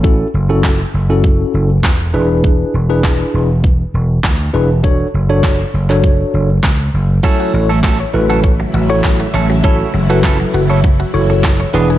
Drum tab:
CC |----------------|----------------|----------------|x---------------|
CP |----x-------x---|----x-------x---|----x--x----x---|----x-------x---|
SD |----o-------o---|----o-------o---|----o-------o---|----o-------o---|
BD |o---o---o---o---|o---o---o---o---|o---o---o---o---|o---o---o---o---|

CC |----------------|
CP |----x-------x---|
SD |----o-------o---|
BD |o---o---o---o---|